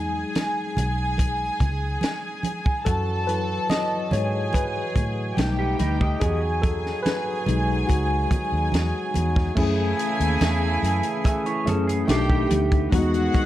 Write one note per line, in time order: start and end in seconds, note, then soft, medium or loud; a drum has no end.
0.00 0.23 E2 medium
0.00 2.82 F#3 medium
0.00 2.82 G#3 soft
0.00 2.83 D#4 medium
0.00 2.83 G#4 medium
0.00 2.83 G#5 medium
0.35 snare medium
0.35 closed hi-hat medium
0.35 high conga medium
0.77 1.48 B1 medium
0.77 closed hi-hat medium
0.77 low conga medium
1.18 kick medium
1.18 closed hi-hat medium
1.18 muted conga soft
1.60 1.96 C#2 medium
1.60 kick medium
1.60 closed hi-hat medium
1.60 muted conga soft
1.60 low conga medium
2.01 snare loud
2.01 closed hi-hat medium
2.01 high conga medium
2.43 closed hi-hat medium
2.43 high conga medium
2.66 kick medium
2.85 3.58 F#2 loud
2.85 5.36 E3 medium
2.85 5.36 F#3 medium
2.85 5.36 F#4 medium
2.85 3.27 A4 medium
2.85 4.10 A4 medium
2.85 4.10 A5 medium
2.85 kick medium
2.85 closed hi-hat loud
2.85 muted conga soft
3.27 4.50 F#3 medium
3.27 4.50 E4 medium
3.27 4.50 A4 medium
3.27 3.67 B4 medium
3.27 closed hi-hat medium
3.70 4.09 D#5 loud
3.70 snare loud
3.70 closed hi-hat medium
3.70 high conga medium
4.11 4.84 G#2 medium
4.11 5.36 G#4 medium
4.11 4.51 C#5 medium
4.11 5.36 G#5 medium
4.11 closed hi-hat medium
4.11 low conga medium
4.53 5.76 B4 medium
4.53 kick medium
4.53 closed hi-hat loud
4.53 muted conga soft
4.96 5.32 A2 medium
4.96 kick medium
4.96 closed hi-hat medium
4.96 muted conga soft
4.96 low conga medium
5.37 5.74 B1 loud
5.37 5.93 G3 medium
5.37 5.94 A3 soft
5.37 6.21 A3 medium
5.37 9.53 D#4 medium
5.37 5.94 D#4 medium
5.37 6.20 G4 medium
5.37 6.21 G4 medium
5.37 6.20 G5 medium
5.37 snare loud
5.37 closed hi-hat medium
5.37 high conga medium
5.59 5.79 B3 medium
5.59 5.79 G4 medium
5.79 6.16 D2 medium
5.79 6.00 D#4 medium
5.79 5.99 B4 medium
5.79 closed hi-hat medium
5.79 high conga medium
6.01 6.41 G4 medium
6.01 6.40 D#5 medium
6.01 kick medium
6.20 6.93 E2 medium
6.20 9.54 F#3 medium
6.20 9.54 F#4 medium
6.20 6.64 G#4 loud
6.20 9.53 G#4 medium
6.20 9.53 G#5 medium
6.20 kick loud
6.20 closed hi-hat medium
6.20 muted conga soft
6.62 7.06 A4 loud
6.62 kick loud
6.62 closed hi-hat medium
6.62 muted conga soft
6.86 snare soft
7.03 7.91 B4 loud
7.03 closed hi-hat medium
7.03 high conga medium
7.07 snare loud
7.46 7.83 B1 medium
7.46 8.03 F#3 medium
7.46 8.03 G#3 medium
7.46 8.04 D#4 medium
7.46 closed hi-hat medium
7.46 low conga medium
7.87 8.25 C#2 loud
7.87 9.10 F#4 medium
7.87 kick medium
7.87 closed hi-hat loud
7.87 muted conga soft
8.31 kick medium
8.31 closed hi-hat medium
8.31 muted conga medium
8.31 low conga medium
8.52 8.70 D#2 medium
8.72 8.91 E2 medium
8.72 snare loud
8.72 closed hi-hat loud
8.72 high conga medium
9.14 9.51 E2 loud
9.14 closed hi-hat medium
9.14 high conga medium
9.36 kick loud
9.36 snare soft
9.55 9.92 F#2 loud
9.55 11.62 C#3 medium
9.55 12.06 E3 medium
9.55 11.07 A3 medium
9.55 11.62 A3 medium
9.55 12.89 A3 medium
9.55 11.08 C#4 medium
9.55 11.62 E4 medium
9.55 11.08 E4 medium
9.55 12.06 G#4 medium
9.55 11.08 G#4 medium
9.55 11.63 G#4 medium
9.55 11.63 G#5 loud
9.55 kick loud
9.55 crash medium
9.55 muted conga soft
9.99 closed hi-hat medium
10.20 10.38 D#2 medium
10.20 closed hi-hat medium
10.41 10.77 E2 loud
10.41 snare loud
10.41 closed hi-hat medium
10.41 high conga medium
10.83 11.00 F#2 medium
10.83 closed hi-hat medium
11.03 closed hi-hat medium
11.24 11.45 G#4 medium
11.24 11.45 E5 medium
11.24 kick medium
11.24 closed hi-hat loud
11.24 muted conga soft
11.46 11.66 E4 medium
11.46 11.66 C#5 medium
11.46 closed hi-hat soft
11.65 12.02 F#2 medium
11.65 12.06 A3 medium
11.65 12.08 C#4 medium
11.65 11.87 C#4 medium
11.65 12.09 E4 medium
11.65 12.09 G#4 loud
11.65 11.87 A4 medium
11.65 closed hi-hat medium
11.65 muted conga medium
11.65 low conga medium
11.88 12.08 B3 medium
11.88 12.07 G#4 medium
11.88 closed hi-hat medium
12.07 12.44 B1 loud
12.07 13.46 B2 medium
12.07 12.49 D#3 medium
12.07 12.83 A3 loud
12.07 12.29 A3 medium
12.07 12.84 D4 medium
12.07 12.50 D4 medium
12.07 12.84 D#4 medium
12.07 12.29 F4 medium
12.07 12.49 G4 medium
12.07 12.92 G4 medium
12.07 12.85 G4 loud
12.07 12.49 G5 medium
12.07 snare loud
12.07 closed hi-hat loud
12.07 high conga medium
12.30 12.89 B3 medium
12.30 12.89 G4 medium
12.30 kick medium
12.51 12.86 D2 medium
12.51 closed hi-hat medium
12.51 high conga medium
12.72 kick loud
12.72 closed hi-hat soft
12.91 13.28 E2 loud
12.91 13.46 D#3 medium
12.91 12.98 G3 medium
12.91 13.46 G#3 medium
12.91 13.46 B3 medium
12.91 13.46 D#4 medium
12.91 13.46 F#4 loud
12.91 13.46 F#4 medium
12.91 13.46 F#4 loud
12.91 13.46 G#4 medium
12.91 13.46 F#5 loud
12.91 kick loud
12.91 closed hi-hat loud
12.91 muted conga medium
12.98 13.46 G#3 medium
13.14 closed hi-hat soft
13.34 kick loud
13.34 closed hi-hat medium
13.34 muted conga soft